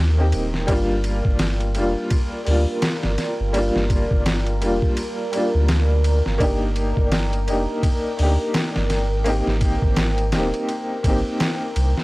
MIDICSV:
0, 0, Header, 1, 5, 480
1, 0, Start_track
1, 0, Tempo, 714286
1, 461, Time_signature, 4, 2, 24, 8
1, 8090, End_track
2, 0, Start_track
2, 0, Title_t, "Ambient pad"
2, 0, Program_c, 0, 92
2, 0, Note_on_c, 0, 70, 90
2, 451, Note_off_c, 0, 70, 0
2, 459, Note_on_c, 0, 70, 86
2, 8090, Note_off_c, 0, 70, 0
2, 8090, End_track
3, 0, Start_track
3, 0, Title_t, "Upright piano"
3, 0, Program_c, 1, 0
3, 0, Control_c, 1, 64, 127
3, 0, Note_on_c, 1, 58, 81
3, 0, Note_on_c, 1, 60, 73
3, 0, Note_on_c, 1, 63, 75
3, 0, Note_on_c, 1, 67, 90
3, 119, Note_off_c, 1, 58, 0
3, 119, Note_on_c, 1, 58, 71
3, 127, Note_off_c, 1, 60, 0
3, 127, Note_on_c, 1, 60, 64
3, 135, Note_off_c, 1, 63, 0
3, 135, Note_on_c, 1, 63, 62
3, 140, Note_off_c, 1, 67, 0
3, 140, Note_on_c, 1, 67, 78
3, 237, Note_off_c, 1, 58, 0
3, 241, Note_off_c, 1, 60, 0
3, 245, Note_off_c, 1, 63, 0
3, 248, Note_off_c, 1, 67, 0
3, 450, Note_on_c, 1, 55, 98
3, 462, Note_on_c, 1, 58, 86
3, 470, Control_c, 1, 64, 0
3, 476, Note_on_c, 1, 62, 91
3, 485, Note_on_c, 1, 65, 105
3, 581, Control_c, 1, 64, 127
3, 1152, Note_off_c, 1, 55, 0
3, 1158, Note_off_c, 1, 58, 0
3, 1165, Note_off_c, 1, 62, 0
3, 1170, Note_off_c, 1, 65, 0
3, 1179, Note_on_c, 1, 55, 79
3, 1184, Note_on_c, 1, 58, 76
3, 1190, Note_on_c, 1, 62, 72
3, 1198, Note_on_c, 1, 65, 94
3, 1335, Note_off_c, 1, 55, 0
3, 1337, Note_off_c, 1, 58, 0
3, 1340, Note_off_c, 1, 62, 0
3, 1344, Note_off_c, 1, 65, 0
3, 1647, Note_on_c, 1, 55, 82
3, 1658, Note_on_c, 1, 58, 73
3, 1671, Note_on_c, 1, 62, 73
3, 1683, Note_on_c, 1, 65, 83
3, 2351, Note_off_c, 1, 55, 0
3, 2356, Note_off_c, 1, 58, 0
3, 2363, Note_off_c, 1, 62, 0
3, 2369, Note_off_c, 1, 65, 0
3, 2372, Note_on_c, 1, 55, 98
3, 2381, Note_on_c, 1, 58, 92
3, 2394, Note_on_c, 1, 62, 89
3, 2409, Note_on_c, 1, 65, 106
3, 3073, Note_off_c, 1, 55, 0
3, 3078, Note_off_c, 1, 58, 0
3, 3084, Note_off_c, 1, 62, 0
3, 3091, Note_off_c, 1, 65, 0
3, 3095, Note_on_c, 1, 55, 81
3, 3103, Note_on_c, 1, 58, 72
3, 3109, Note_on_c, 1, 62, 73
3, 3116, Note_on_c, 1, 65, 88
3, 3253, Note_off_c, 1, 55, 0
3, 3256, Note_off_c, 1, 58, 0
3, 3259, Note_off_c, 1, 62, 0
3, 3263, Note_off_c, 1, 65, 0
3, 3572, Note_on_c, 1, 55, 78
3, 3583, Note_on_c, 1, 58, 71
3, 3596, Note_on_c, 1, 62, 71
3, 3608, Note_on_c, 1, 65, 87
3, 4273, Note_off_c, 1, 55, 0
3, 4278, Note_off_c, 1, 58, 0
3, 4285, Note_off_c, 1, 62, 0
3, 4289, Note_on_c, 1, 58, 102
3, 4291, Note_off_c, 1, 65, 0
3, 4301, Note_on_c, 1, 62, 92
3, 4309, Control_c, 1, 64, 0
3, 4311, Note_on_c, 1, 63, 90
3, 4324, Note_on_c, 1, 67, 102
3, 4424, Control_c, 1, 64, 127
3, 4991, Note_off_c, 1, 58, 0
3, 4998, Note_off_c, 1, 62, 0
3, 5003, Note_off_c, 1, 63, 0
3, 5009, Note_off_c, 1, 67, 0
3, 5022, Note_on_c, 1, 58, 84
3, 5027, Note_on_c, 1, 62, 71
3, 5036, Note_on_c, 1, 63, 77
3, 5041, Note_on_c, 1, 67, 91
3, 5176, Note_off_c, 1, 58, 0
3, 5179, Note_off_c, 1, 62, 0
3, 5183, Note_off_c, 1, 63, 0
3, 5185, Note_off_c, 1, 67, 0
3, 5490, Note_on_c, 1, 58, 82
3, 5501, Note_on_c, 1, 62, 73
3, 5515, Note_on_c, 1, 63, 73
3, 5527, Note_on_c, 1, 67, 92
3, 6192, Note_off_c, 1, 58, 0
3, 6198, Note_off_c, 1, 62, 0
3, 6205, Note_off_c, 1, 63, 0
3, 6211, Note_off_c, 1, 67, 0
3, 6211, Note_on_c, 1, 58, 102
3, 6221, Note_on_c, 1, 60, 86
3, 6231, Control_c, 1, 64, 0
3, 6233, Note_on_c, 1, 63, 90
3, 6244, Note_on_c, 1, 67, 117
3, 6355, Control_c, 1, 64, 127
3, 6912, Note_off_c, 1, 58, 0
3, 6917, Note_off_c, 1, 60, 0
3, 6923, Note_off_c, 1, 63, 0
3, 6929, Note_off_c, 1, 67, 0
3, 6941, Note_on_c, 1, 58, 84
3, 6948, Note_on_c, 1, 60, 75
3, 6953, Note_on_c, 1, 63, 74
3, 6960, Note_on_c, 1, 67, 87
3, 7096, Note_off_c, 1, 58, 0
3, 7099, Note_off_c, 1, 60, 0
3, 7101, Note_off_c, 1, 63, 0
3, 7105, Note_off_c, 1, 67, 0
3, 7411, Note_on_c, 1, 58, 79
3, 7424, Note_on_c, 1, 60, 78
3, 7438, Note_on_c, 1, 63, 73
3, 7450, Note_on_c, 1, 67, 89
3, 8090, Note_off_c, 1, 58, 0
3, 8090, Note_off_c, 1, 60, 0
3, 8090, Note_off_c, 1, 63, 0
3, 8090, Note_off_c, 1, 67, 0
3, 8090, End_track
4, 0, Start_track
4, 0, Title_t, "Sub bass"
4, 0, Program_c, 2, 38
4, 0, Note_on_c, 2, 39, 101
4, 224, Note_off_c, 2, 39, 0
4, 228, Note_on_c, 2, 27, 93
4, 441, Note_off_c, 2, 27, 0
4, 463, Note_on_c, 2, 31, 96
4, 817, Note_off_c, 2, 31, 0
4, 840, Note_on_c, 2, 31, 98
4, 1186, Note_on_c, 2, 29, 86
4, 1196, Note_off_c, 2, 31, 0
4, 1309, Note_off_c, 2, 29, 0
4, 1660, Note_on_c, 2, 38, 93
4, 1785, Note_off_c, 2, 38, 0
4, 2043, Note_on_c, 2, 31, 85
4, 2129, Note_off_c, 2, 31, 0
4, 2283, Note_on_c, 2, 31, 99
4, 2489, Note_off_c, 2, 31, 0
4, 2521, Note_on_c, 2, 31, 97
4, 2728, Note_off_c, 2, 31, 0
4, 2764, Note_on_c, 2, 31, 97
4, 3100, Note_on_c, 2, 29, 91
4, 3110, Note_off_c, 2, 31, 0
4, 3225, Note_off_c, 2, 29, 0
4, 3725, Note_on_c, 2, 38, 105
4, 4177, Note_off_c, 2, 38, 0
4, 4207, Note_on_c, 2, 31, 88
4, 4291, Note_off_c, 2, 31, 0
4, 4304, Note_on_c, 2, 31, 97
4, 4657, Note_off_c, 2, 31, 0
4, 4688, Note_on_c, 2, 31, 93
4, 5026, Note_on_c, 2, 29, 90
4, 5036, Note_off_c, 2, 31, 0
4, 5148, Note_off_c, 2, 29, 0
4, 5504, Note_on_c, 2, 38, 93
4, 5628, Note_off_c, 2, 38, 0
4, 5888, Note_on_c, 2, 31, 84
4, 6122, Note_on_c, 2, 32, 104
4, 6132, Note_off_c, 2, 31, 0
4, 6328, Note_off_c, 2, 32, 0
4, 6361, Note_on_c, 2, 32, 104
4, 6568, Note_off_c, 2, 32, 0
4, 6602, Note_on_c, 2, 32, 98
4, 6942, Note_on_c, 2, 27, 92
4, 6952, Note_off_c, 2, 32, 0
4, 7067, Note_off_c, 2, 27, 0
4, 7423, Note_on_c, 2, 32, 86
4, 7547, Note_off_c, 2, 32, 0
4, 7902, Note_on_c, 2, 36, 101
4, 8026, Note_off_c, 2, 36, 0
4, 8090, End_track
5, 0, Start_track
5, 0, Title_t, "Drums"
5, 217, Note_on_c, 9, 51, 75
5, 284, Note_off_c, 9, 51, 0
5, 362, Note_on_c, 9, 38, 37
5, 429, Note_off_c, 9, 38, 0
5, 457, Note_on_c, 9, 51, 88
5, 458, Note_on_c, 9, 36, 106
5, 524, Note_off_c, 9, 51, 0
5, 526, Note_off_c, 9, 36, 0
5, 698, Note_on_c, 9, 51, 65
5, 765, Note_off_c, 9, 51, 0
5, 840, Note_on_c, 9, 36, 94
5, 907, Note_off_c, 9, 36, 0
5, 935, Note_on_c, 9, 51, 87
5, 937, Note_on_c, 9, 38, 110
5, 1002, Note_off_c, 9, 51, 0
5, 1005, Note_off_c, 9, 38, 0
5, 1078, Note_on_c, 9, 51, 44
5, 1146, Note_off_c, 9, 51, 0
5, 1174, Note_on_c, 9, 51, 64
5, 1241, Note_off_c, 9, 51, 0
5, 1414, Note_on_c, 9, 51, 84
5, 1417, Note_on_c, 9, 36, 105
5, 1481, Note_off_c, 9, 51, 0
5, 1485, Note_off_c, 9, 36, 0
5, 1656, Note_on_c, 9, 46, 81
5, 1723, Note_off_c, 9, 46, 0
5, 1895, Note_on_c, 9, 51, 88
5, 1898, Note_on_c, 9, 38, 110
5, 1963, Note_off_c, 9, 51, 0
5, 1965, Note_off_c, 9, 38, 0
5, 2038, Note_on_c, 9, 38, 54
5, 2106, Note_off_c, 9, 38, 0
5, 2137, Note_on_c, 9, 51, 68
5, 2139, Note_on_c, 9, 38, 41
5, 2204, Note_off_c, 9, 51, 0
5, 2207, Note_off_c, 9, 38, 0
5, 2379, Note_on_c, 9, 51, 81
5, 2446, Note_off_c, 9, 51, 0
5, 2524, Note_on_c, 9, 38, 39
5, 2591, Note_off_c, 9, 38, 0
5, 2619, Note_on_c, 9, 36, 90
5, 2620, Note_on_c, 9, 51, 64
5, 2686, Note_off_c, 9, 36, 0
5, 2687, Note_off_c, 9, 51, 0
5, 2761, Note_on_c, 9, 36, 90
5, 2829, Note_off_c, 9, 36, 0
5, 2861, Note_on_c, 9, 51, 90
5, 2864, Note_on_c, 9, 38, 118
5, 2928, Note_off_c, 9, 51, 0
5, 2931, Note_off_c, 9, 38, 0
5, 3001, Note_on_c, 9, 51, 44
5, 3068, Note_off_c, 9, 51, 0
5, 3102, Note_on_c, 9, 51, 68
5, 3170, Note_off_c, 9, 51, 0
5, 3241, Note_on_c, 9, 36, 90
5, 3308, Note_off_c, 9, 36, 0
5, 3339, Note_on_c, 9, 51, 87
5, 3406, Note_off_c, 9, 51, 0
5, 3581, Note_on_c, 9, 51, 70
5, 3648, Note_off_c, 9, 51, 0
5, 3820, Note_on_c, 9, 51, 86
5, 3823, Note_on_c, 9, 38, 121
5, 3887, Note_off_c, 9, 51, 0
5, 3890, Note_off_c, 9, 38, 0
5, 4061, Note_on_c, 9, 51, 70
5, 4128, Note_off_c, 9, 51, 0
5, 4207, Note_on_c, 9, 38, 38
5, 4274, Note_off_c, 9, 38, 0
5, 4301, Note_on_c, 9, 36, 106
5, 4304, Note_on_c, 9, 51, 86
5, 4368, Note_off_c, 9, 36, 0
5, 4371, Note_off_c, 9, 51, 0
5, 4541, Note_on_c, 9, 51, 61
5, 4609, Note_off_c, 9, 51, 0
5, 4684, Note_on_c, 9, 36, 98
5, 4751, Note_off_c, 9, 36, 0
5, 4782, Note_on_c, 9, 51, 92
5, 4785, Note_on_c, 9, 38, 123
5, 4849, Note_off_c, 9, 51, 0
5, 4852, Note_off_c, 9, 38, 0
5, 4926, Note_on_c, 9, 51, 41
5, 4993, Note_off_c, 9, 51, 0
5, 5025, Note_on_c, 9, 51, 70
5, 5092, Note_off_c, 9, 51, 0
5, 5262, Note_on_c, 9, 36, 113
5, 5263, Note_on_c, 9, 51, 86
5, 5329, Note_off_c, 9, 36, 0
5, 5330, Note_off_c, 9, 51, 0
5, 5502, Note_on_c, 9, 46, 86
5, 5569, Note_off_c, 9, 46, 0
5, 5740, Note_on_c, 9, 51, 90
5, 5743, Note_on_c, 9, 38, 112
5, 5807, Note_off_c, 9, 51, 0
5, 5810, Note_off_c, 9, 38, 0
5, 5886, Note_on_c, 9, 38, 56
5, 5953, Note_off_c, 9, 38, 0
5, 5979, Note_on_c, 9, 51, 69
5, 5982, Note_on_c, 9, 38, 42
5, 6047, Note_off_c, 9, 51, 0
5, 6049, Note_off_c, 9, 38, 0
5, 6220, Note_on_c, 9, 51, 86
5, 6287, Note_off_c, 9, 51, 0
5, 6366, Note_on_c, 9, 38, 36
5, 6434, Note_off_c, 9, 38, 0
5, 6457, Note_on_c, 9, 51, 67
5, 6458, Note_on_c, 9, 36, 88
5, 6524, Note_off_c, 9, 51, 0
5, 6526, Note_off_c, 9, 36, 0
5, 6600, Note_on_c, 9, 36, 94
5, 6667, Note_off_c, 9, 36, 0
5, 6696, Note_on_c, 9, 51, 87
5, 6699, Note_on_c, 9, 38, 125
5, 6763, Note_off_c, 9, 51, 0
5, 6766, Note_off_c, 9, 38, 0
5, 6840, Note_on_c, 9, 51, 42
5, 6907, Note_off_c, 9, 51, 0
5, 6936, Note_on_c, 9, 51, 79
5, 6939, Note_on_c, 9, 38, 98
5, 7003, Note_off_c, 9, 51, 0
5, 7006, Note_off_c, 9, 38, 0
5, 7081, Note_on_c, 9, 51, 41
5, 7148, Note_off_c, 9, 51, 0
5, 7181, Note_on_c, 9, 51, 61
5, 7248, Note_off_c, 9, 51, 0
5, 7419, Note_on_c, 9, 36, 110
5, 7420, Note_on_c, 9, 51, 87
5, 7487, Note_off_c, 9, 36, 0
5, 7487, Note_off_c, 9, 51, 0
5, 7661, Note_on_c, 9, 51, 85
5, 7664, Note_on_c, 9, 38, 115
5, 7728, Note_off_c, 9, 51, 0
5, 7731, Note_off_c, 9, 38, 0
5, 7902, Note_on_c, 9, 51, 73
5, 7970, Note_off_c, 9, 51, 0
5, 8047, Note_on_c, 9, 38, 41
5, 8090, Note_off_c, 9, 38, 0
5, 8090, End_track
0, 0, End_of_file